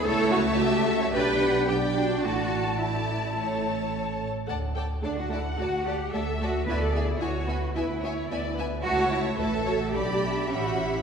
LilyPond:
<<
  \new Staff \with { instrumentName = "Violin section" } { \time 4/4 \key a \mixolydian \tempo 4 = 109 << { a''2 g''4 g''4 | a''4 a''4 a''4. r8 | a''8 a''8 a''8 a''8 a''8 a''8 a''8 a''8 | gis''8 gis''8 gis''8 gis''8 gis''8 gis''8 gis''8 gis''8 |
a''4 a''4 b''4 b''4 | } \\ { e''2 d''4 d''4 | d''4 d''4 cis''4. r8 | d''8 d''8 d''8 d''8 d''8 d''8 d''8 d''8 | e''8 e''8 e''8 e''8 e''8 e''8 e''8 e''8 |
e''4 e''4 d''8 e''8 fis''4 | } >> }
  \new Staff \with { instrumentName = "Violin section" } { \time 4/4 \key a \mixolydian cis''4 e''4 d''8 fis''8 g''4 | a''2.~ a''8 r8 | fis''8 g''8 fis''2 e''4 | d''4 cis''8 b'8 b'8 cis''8 d''8 b'8 |
cis''4 b'8 cis''8 d''4 e''4 | }
  \new Staff \with { instrumentName = "Cello section" } { \time 4/4 \key a \mixolydian a'8 fis'8 g'8 a'16 cis''16 b'4 g'8 d'8 | fis'4 e'2 r4 | r4 d'16 fis'16 e'8 fis'8 g'8 a'8 fis'8 | b'16 a'16 gis'16 e'16 fis'4 e'4. r8 |
fis'8 e'8 a'4 g'4~ g'16 fis'16 e'8 | }
  \new Staff \with { instrumentName = "Viola section" } { \time 4/4 \key a \mixolydian << { e'4 fis'4 g'4 g'8 fis'8 | e'4 e'4 a'4. r8 | a'8 a'8 a'8 a'8 a'8 a'8 a'8 a'8 | e'8 e'8 e'8 e'8 e'8 e'8 e'8 e'8 |
e'4 e'8 fis'8 g'4 g'4 | } \\ { a2 d'4 d'4 | a4 a4 a4. r8 | a8 a8 a8 a8 a8 a8 a8 a8 | b8 b8 b8 b8 b8 b8 b8 b8 |
a4 a4 d'4 cis'4 | } >> }
  \new Staff \with { instrumentName = "Double bass section" } { \clef bass \time 4/4 \key a \mixolydian cis,2 b,,2 | a,,2.~ a,,8 r8 | d,4 d,4 d,4 d,4 | d,4 d,4 d,4 d,4 |
cis,4 a,,4 b,,4 a,,4 | }
>>